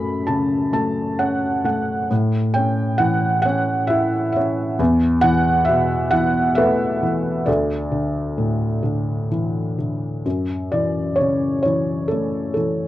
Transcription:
0.00 2.06 F#2 soft
0.00 0.71 A3 soft
0.00 0.24 B5 medium
0.27 2.06 C#3 soft
0.27 0.70 A5 medium
0.73 1.63 A3 soft
0.73 1.16 A5 medium
1.19 2.08 C#4 soft
1.19 1.64 F#5 medium
1.64 2.09 A3 soft
1.64 2.07 F#5 medium
2.10 4.76 A2 medium
2.54 3.44 C#4 soft
2.54 2.97 G5 medium
2.98 4.75 E3 soft
2.98 3.40 F#5 medium
3.42 4.35 C#4 medium
3.42 3.86 F#5 medium
3.87 4.76 E4 medium
3.87 4.31 E5 medium
4.32 4.75 E5 medium
4.36 4.79 C#4 soft
4.79 7.43 E2 medium
5.21 6.11 E3 medium
5.21 5.64 F#5 loud
5.65 7.43 B2 medium
5.65 6.13 E5 medium
6.11 7.01 E3 medium
6.11 6.54 F#5 medium
6.55 7.44 A3 soft
6.55 7.43 A4 medium
6.55 7.43 B4 medium
6.55 7.49 E5 medium
7.03 7.46 E3 soft
7.46 10.21 D2 medium
7.46 9.28 A4 soft
7.46 9.27 D5 medium
7.91 8.81 D3 soft
8.38 10.21 A2 soft
8.83 9.77 D3 soft
9.31 10.23 E3 soft
9.79 10.24 D3 soft
10.26 12.88 F#2 soft
10.72 11.64 E3 soft
10.72 11.16 D5 medium
11.16 11.61 C#5 medium
11.20 12.88 C#3 soft
11.63 12.55 E3 soft
11.63 12.07 C#5 medium
12.08 12.88 A3 soft
12.08 12.52 A4 medium
12.54 12.88 E3 soft
12.54 12.88 A4 medium

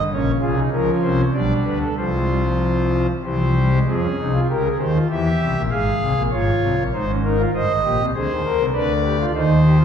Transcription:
0.00 0.10 D3 medium
0.12 0.31 A#1 medium
0.12 0.31 A#2 medium
0.12 0.64 C#3 medium
0.12 0.31 C#4 medium
0.12 0.31 C#5 medium
0.41 0.60 C2 medium
0.41 0.60 C3 medium
0.41 0.55 F4 medium
0.41 0.60 G#4 medium
0.57 0.70 D#4 medium
0.71 0.90 C#2 medium
0.71 0.90 C#3 medium
0.71 1.24 F3 medium
0.71 1.24 C#4 medium
0.71 0.90 A#4 medium
1.02 1.21 C2 medium
1.02 1.22 C3 medium
1.02 1.21 C5 medium
1.33 1.53 B1 medium
1.33 1.53 B2 medium
1.33 1.88 G3 medium
1.33 1.88 D4 medium
1.33 1.53 D5 medium
1.65 1.85 D2 medium
1.65 1.84 D3 medium
1.65 1.78 B4 medium
1.80 1.94 A4 medium
1.97 3.07 C2 medium
1.97 3.07 C3 medium
1.97 2.10 F3 medium
1.97 3.07 F4 medium
1.97 3.07 C5 medium
2.13 2.27 G#3 medium
2.29 2.42 G3 medium
2.44 3.13 F3 medium
3.24 3.79 C2 medium
3.24 3.79 C3 medium
3.24 3.38 E3 medium
3.24 3.79 G4 medium
3.24 3.79 C5 medium
3.39 3.53 F3 medium
3.56 3.70 G3 medium
3.72 3.86 G#3 medium
3.87 4.07 F2 medium
3.87 4.07 F3 medium
3.87 4.01 C4 medium
3.87 4.41 G#4 medium
4.03 4.16 C#4 medium
4.19 4.38 C2 medium
4.19 4.38 C3 medium
4.19 4.32 D#4 medium
4.34 4.47 F4 medium
4.49 4.68 C#2 medium
4.49 4.68 C#3 medium
4.49 4.62 G4 medium
4.49 4.68 A#4 medium
4.65 4.78 G#4 medium
4.79 4.98 D#2 medium
4.79 4.99 D#3 medium
4.79 4.92 G4 medium
4.79 4.98 C5 medium
4.94 5.08 F4 medium
5.10 5.29 E2 medium
5.10 5.29 E3 medium
5.10 5.62 G4 medium
5.10 5.62 E5 medium
5.41 5.54 C2 medium
5.41 5.54 C3 medium
5.56 5.69 A#1 medium
5.56 5.69 A#2 medium
5.71 5.90 G#1 medium
5.71 5.90 G#2 medium
5.71 6.22 G#4 medium
5.71 6.22 F5 medium
6.00 6.13 C2 medium
6.00 6.13 C3 medium
6.16 6.29 A#1 medium
6.16 6.29 A#2 medium
6.31 6.50 G#1 medium
6.31 6.50 G#2 medium
6.31 6.83 F4 medium
6.31 6.83 C#5 medium
6.61 6.74 C2 medium
6.61 6.75 C3 medium
6.78 6.90 A#1 medium
6.78 6.90 A#2 medium
6.93 7.45 G#1 medium
6.93 7.45 G#2 medium
6.93 7.05 D#4 medium
6.93 7.12 C5 medium
7.08 7.21 C#4 medium
7.24 7.36 D#4 medium
7.24 7.42 A#4 medium
7.39 7.51 F4 medium
7.54 7.66 G1 medium
7.54 7.66 G2 medium
7.54 7.72 C5 medium
7.54 8.05 D#5 medium
7.70 7.82 G#1 medium
7.70 7.82 G#2 medium
7.84 7.97 A#1 medium
7.84 7.97 A#2 medium
7.84 8.02 G4 medium
8.00 8.12 C2 medium
8.00 8.12 C3 medium
8.15 8.27 D2 medium
8.15 8.27 D3 medium
8.15 8.33 G#4 medium
8.15 8.66 C5 medium
8.31 8.42 D#2 medium
8.31 8.42 D#3 medium
8.44 8.57 D2 medium
8.44 8.56 D3 medium
8.44 8.63 A#4 medium
8.58 8.71 C2 medium
8.58 8.71 C3 medium
8.73 9.26 D2 medium
8.73 9.26 D3 medium
8.73 8.92 B4 medium
8.73 9.25 D5 medium
9.04 9.17 G4 medium
9.20 9.32 F4 medium
9.34 9.85 D#2 medium
9.34 9.85 D#3 medium
9.34 9.53 D#4 medium
9.34 9.85 C5 medium
9.65 9.77 G4 medium
9.80 9.85 F4 medium

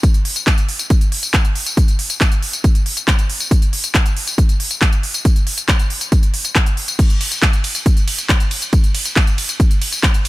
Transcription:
0.03 kick loud
0.03 closed hi-hat medium
0.03 tambourine medium
0.14 closed hi-hat soft
0.14 tambourine soft
0.25 open hi-hat loud
0.36 closed hi-hat medium
0.36 tambourine medium
0.47 kick loud
0.47 clap loud
0.47 closed hi-hat medium
0.47 tambourine medium
0.58 closed hi-hat medium
0.58 tambourine soft
0.69 open hi-hat medium
0.79 closed hi-hat medium
0.79 tambourine medium
0.90 kick loud
0.90 closed hi-hat medium
0.90 tambourine medium
1.01 closed hi-hat medium
1.01 tambourine soft
1.12 open hi-hat loud
1.23 closed hi-hat medium
1.23 tambourine medium
1.34 kick loud
1.34 clap loud
1.34 closed hi-hat medium
1.45 closed hi-hat medium
1.45 tambourine soft
1.55 open hi-hat medium
1.66 closed hi-hat medium
1.66 tambourine medium
1.77 kick loud
1.77 closed hi-hat medium
1.77 tambourine medium
1.88 closed hi-hat medium
1.88 tambourine soft
1.99 open hi-hat loud
2.10 closed hi-hat medium
2.10 tambourine medium
2.21 kick loud
2.21 clap loud
2.21 closed hi-hat medium
2.21 tambourine medium
2.32 closed hi-hat medium
2.32 tambourine soft
2.42 open hi-hat medium
2.53 closed hi-hat medium
2.53 tambourine medium
2.64 kick loud
2.64 closed hi-hat loud
2.64 tambourine medium
2.75 closed hi-hat medium
2.75 tambourine soft
2.86 open hi-hat loud
2.97 closed hi-hat medium
2.97 tambourine medium
3.08 kick loud
3.08 clap loud
3.08 closed hi-hat medium
3.08 tambourine medium
3.19 closed hi-hat medium
3.19 tambourine soft
3.30 open hi-hat medium
3.40 closed hi-hat medium
3.40 tambourine medium
3.51 kick loud
3.51 closed hi-hat loud
3.51 tambourine medium
3.62 closed hi-hat medium
3.62 tambourine soft
3.73 open hi-hat loud
3.84 closed hi-hat medium
3.84 tambourine medium
3.95 kick loud
3.95 clap loud
3.95 closed hi-hat medium
3.95 tambourine medium
4.06 closed hi-hat medium
4.06 tambourine soft
4.17 open hi-hat medium
4.27 closed hi-hat medium
4.27 tambourine medium
4.38 kick loud
4.38 closed hi-hat loud
4.49 closed hi-hat medium
4.49 tambourine soft
4.60 open hi-hat loud
4.71 closed hi-hat medium
4.71 tambourine medium
4.82 kick loud
4.82 clap loud
4.82 closed hi-hat medium
4.82 tambourine medium
4.93 closed hi-hat medium
4.93 tambourine soft
5.03 open hi-hat medium
5.14 closed hi-hat medium
5.14 tambourine medium
5.25 kick loud
5.25 closed hi-hat loud
5.25 tambourine medium
5.36 closed hi-hat medium
5.36 tambourine soft
5.47 open hi-hat loud
5.58 closed hi-hat medium
5.58 tambourine medium
5.69 kick loud
5.69 clap loud
5.69 closed hi-hat loud
5.69 tambourine soft
5.79 closed hi-hat medium
5.79 tambourine soft
5.90 open hi-hat medium
6.01 closed hi-hat medium
6.01 tambourine medium
6.12 kick loud
6.12 closed hi-hat loud
6.12 tambourine medium
6.23 closed hi-hat medium
6.23 tambourine soft
6.34 open hi-hat loud
6.45 closed hi-hat medium
6.45 tambourine medium
6.55 kick loud
6.55 clap loud
6.55 closed hi-hat loud
6.55 tambourine medium
6.66 closed hi-hat medium
6.66 tambourine soft
6.77 open hi-hat medium
6.88 closed hi-hat medium
6.88 tambourine medium
6.99 kick loud
6.99 closed hi-hat loud
6.99 crash medium
7.10 closed hi-hat medium
7.10 tambourine soft
7.21 open hi-hat loud
7.21 ride medium
7.32 closed hi-hat medium
7.32 tambourine medium
7.42 kick loud
7.42 clap loud
7.42 closed hi-hat medium
7.53 closed hi-hat medium
7.53 tambourine soft
7.64 open hi-hat loud
7.64 ride medium
7.75 closed hi-hat medium
7.75 tambourine medium
7.86 kick loud
7.86 closed hi-hat loud
7.86 tambourine medium
7.97 closed hi-hat medium
7.97 tambourine soft
8.08 open hi-hat loud
8.08 ride medium
8.18 closed hi-hat medium
8.18 tambourine medium
8.29 kick loud
8.29 clap loud
8.29 closed hi-hat loud
8.29 tambourine medium
8.40 closed hi-hat medium
8.40 tambourine soft
8.51 open hi-hat medium
8.51 ride medium
8.62 closed hi-hat medium
8.62 tambourine medium
8.73 kick loud
8.73 closed hi-hat loud
8.73 tambourine medium
8.84 closed hi-hat medium
8.84 tambourine soft
8.95 open hi-hat loud
8.95 ride medium
9.05 closed hi-hat medium
9.05 tambourine medium
9.16 kick loud
9.16 clap loud
9.16 closed hi-hat medium
9.16 tambourine soft
9.27 closed hi-hat medium
9.27 tambourine soft
9.38 open hi-hat loud
9.38 ride medium
9.49 closed hi-hat medium
9.49 tambourine medium
9.60 kick loud
9.60 closed hi-hat loud
9.60 tambourine medium
9.71 closed hi-hat medium
9.71 tambourine soft
9.82 open hi-hat loud
9.82 ride medium
9.92 closed hi-hat medium
9.92 tambourine medium
10.03 kick loud
10.03 clap loud
10.03 closed hi-hat medium
10.14 closed hi-hat medium
10.14 tambourine soft
10.25 open hi-hat medium
10.25 ride medium

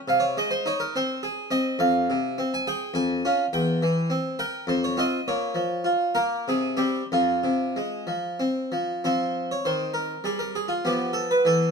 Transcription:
0.08 0.35 C3 medium
0.08 0.22 F5 loud
0.20 0.35 C#5 medium
0.37 0.67 G#3 medium
0.37 0.51 D#5 loud
0.51 0.65 C5 medium
0.66 0.96 D#4 medium
0.66 0.80 C#5 loud
0.80 0.94 A#4 medium
0.96 1.24 C4 medium
0.96 1.23 C5 medium
1.23 1.52 G#4 medium
1.51 1.79 C4 soft
1.51 1.79 D#5 loud
1.79 2.06 F2 medium
1.79 2.50 F5 loud
2.10 2.38 C3 medium
2.38 2.67 C4 medium
2.54 2.66 G#5 loud
2.67 2.94 G#4 medium
2.67 2.94 G5 loud
2.94 3.21 F2 medium
2.94 3.42 G#5 loud
3.25 3.44 C#4 medium
3.25 3.44 F4 medium
3.53 3.79 E2 medium
3.53 4.26 G5 loud
3.82 4.11 E3 soft
4.10 4.39 C4 medium
4.39 4.68 A#4 medium
4.39 4.63 G5 loud
4.67 4.96 F2 medium
4.67 4.82 C5 medium
4.84 4.98 C#5 medium
4.97 5.18 C4 medium
4.97 5.19 F4 medium
4.97 5.27 D#5 loud
5.28 5.56 A#2 medium
5.28 6.17 C#5 medium
5.55 5.86 F3 soft
5.84 6.17 F4 soft
6.15 6.47 A#3 medium
6.15 6.47 A#4 medium
6.48 6.79 C3 medium
6.48 6.76 G#4 medium
6.77 7.01 G3 soft
6.77 7.01 C4 soft
6.77 7.05 G4 medium
7.12 7.42 F2 medium
7.12 8.72 F4 medium
7.44 7.77 C3 soft
7.76 8.09 G#3 soft
8.07 8.41 F3 soft
8.40 8.73 C4 soft
8.72 9.03 F3 soft
9.04 9.54 F3 soft
9.04 10.83 C4 soft
9.04 9.51 C5 medium
9.51 9.66 C#5 medium
9.65 10.14 D#3 soft
9.65 9.91 C5 medium
9.94 10.25 A#4 medium
10.24 10.73 G3 soft
10.24 10.41 G#4 medium
10.39 10.55 A#4 medium
10.55 10.71 G#4 medium
10.68 10.85 F4 medium
10.85 11.34 F3 soft
10.85 11.71 B3 soft
10.85 11.12 G4 medium
11.13 11.30 A4 medium
11.31 11.47 B4 medium
11.45 11.71 E3 soft
11.45 11.71 A4 medium

